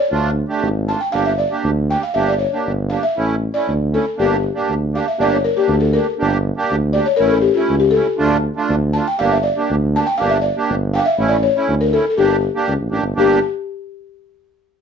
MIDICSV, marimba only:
0, 0, Header, 1, 2, 480
1, 0, Start_track
1, 0, Tempo, 505476
1, 119, Time_signature, 2, 2, 24, 8
1, 6838, Tempo, 496689
1, 14195, End_track
2, 0, Start_track
2, 0, Title_t, "Marimba"
2, 0, Program_c, 0, 12
2, 0, Note_on_c, 0, 74, 83
2, 804, Note_off_c, 0, 74, 0
2, 839, Note_on_c, 0, 81, 100
2, 954, Note_on_c, 0, 79, 89
2, 966, Note_off_c, 0, 81, 0
2, 1066, Note_on_c, 0, 77, 110
2, 1084, Note_off_c, 0, 79, 0
2, 1192, Note_on_c, 0, 76, 91
2, 1200, Note_off_c, 0, 77, 0
2, 1311, Note_off_c, 0, 76, 0
2, 1312, Note_on_c, 0, 74, 99
2, 1543, Note_off_c, 0, 74, 0
2, 1809, Note_on_c, 0, 79, 102
2, 1929, Note_on_c, 0, 77, 91
2, 1933, Note_off_c, 0, 79, 0
2, 2032, Note_on_c, 0, 76, 98
2, 2041, Note_off_c, 0, 77, 0
2, 2165, Note_off_c, 0, 76, 0
2, 2171, Note_on_c, 0, 74, 85
2, 2271, Note_on_c, 0, 73, 77
2, 2294, Note_off_c, 0, 74, 0
2, 2504, Note_off_c, 0, 73, 0
2, 2750, Note_on_c, 0, 77, 86
2, 2879, Note_on_c, 0, 76, 106
2, 2885, Note_off_c, 0, 77, 0
2, 3361, Note_on_c, 0, 74, 96
2, 3380, Note_off_c, 0, 76, 0
2, 3737, Note_off_c, 0, 74, 0
2, 3743, Note_on_c, 0, 69, 83
2, 3961, Note_off_c, 0, 69, 0
2, 3983, Note_on_c, 0, 67, 82
2, 4423, Note_off_c, 0, 67, 0
2, 4704, Note_on_c, 0, 77, 77
2, 4820, Note_off_c, 0, 77, 0
2, 4821, Note_on_c, 0, 76, 78
2, 4938, Note_off_c, 0, 76, 0
2, 4947, Note_on_c, 0, 74, 101
2, 5051, Note_on_c, 0, 73, 73
2, 5061, Note_off_c, 0, 74, 0
2, 5169, Note_on_c, 0, 70, 89
2, 5173, Note_off_c, 0, 73, 0
2, 5287, Note_on_c, 0, 67, 77
2, 5291, Note_off_c, 0, 70, 0
2, 5509, Note_off_c, 0, 67, 0
2, 5509, Note_on_c, 0, 69, 74
2, 5634, Note_on_c, 0, 70, 82
2, 5641, Note_off_c, 0, 69, 0
2, 6554, Note_off_c, 0, 70, 0
2, 6581, Note_on_c, 0, 74, 100
2, 6700, Note_off_c, 0, 74, 0
2, 6703, Note_on_c, 0, 73, 92
2, 6792, Note_off_c, 0, 73, 0
2, 6803, Note_on_c, 0, 70, 109
2, 6812, Note_on_c, 0, 73, 78
2, 6838, Note_off_c, 0, 73, 0
2, 6898, Note_off_c, 0, 70, 0
2, 6909, Note_on_c, 0, 70, 73
2, 6933, Note_on_c, 0, 69, 90
2, 6948, Note_off_c, 0, 70, 0
2, 7043, Note_on_c, 0, 67, 85
2, 7070, Note_off_c, 0, 69, 0
2, 7167, Note_on_c, 0, 65, 86
2, 7185, Note_off_c, 0, 67, 0
2, 7414, Note_on_c, 0, 67, 92
2, 7432, Note_off_c, 0, 65, 0
2, 7522, Note_on_c, 0, 69, 94
2, 7552, Note_off_c, 0, 67, 0
2, 8468, Note_off_c, 0, 69, 0
2, 8512, Note_on_c, 0, 81, 103
2, 8643, Note_off_c, 0, 81, 0
2, 8649, Note_on_c, 0, 79, 98
2, 8759, Note_on_c, 0, 77, 107
2, 8772, Note_off_c, 0, 79, 0
2, 8884, Note_on_c, 0, 76, 96
2, 8887, Note_off_c, 0, 77, 0
2, 8992, Note_on_c, 0, 74, 101
2, 8997, Note_off_c, 0, 76, 0
2, 9223, Note_off_c, 0, 74, 0
2, 9504, Note_on_c, 0, 81, 100
2, 9607, Note_on_c, 0, 79, 105
2, 9609, Note_off_c, 0, 81, 0
2, 9714, Note_on_c, 0, 77, 106
2, 9732, Note_off_c, 0, 79, 0
2, 9827, Note_on_c, 0, 76, 89
2, 9846, Note_off_c, 0, 77, 0
2, 9944, Note_on_c, 0, 74, 87
2, 9949, Note_off_c, 0, 76, 0
2, 10179, Note_off_c, 0, 74, 0
2, 10446, Note_on_c, 0, 77, 91
2, 10464, Note_on_c, 0, 79, 96
2, 10479, Note_off_c, 0, 77, 0
2, 10496, Note_on_c, 0, 77, 97
2, 10502, Note_off_c, 0, 79, 0
2, 10563, Note_on_c, 0, 76, 101
2, 10565, Note_off_c, 0, 77, 0
2, 10785, Note_on_c, 0, 74, 99
2, 10789, Note_off_c, 0, 76, 0
2, 10908, Note_off_c, 0, 74, 0
2, 10922, Note_on_c, 0, 73, 105
2, 11290, Note_on_c, 0, 70, 97
2, 11296, Note_off_c, 0, 73, 0
2, 11409, Note_on_c, 0, 69, 93
2, 11413, Note_off_c, 0, 70, 0
2, 11563, Note_off_c, 0, 69, 0
2, 11574, Note_on_c, 0, 69, 65
2, 11640, Note_off_c, 0, 69, 0
2, 11646, Note_on_c, 0, 67, 93
2, 12326, Note_off_c, 0, 67, 0
2, 12622, Note_on_c, 0, 67, 101
2, 12836, Note_off_c, 0, 67, 0
2, 14195, End_track
0, 0, End_of_file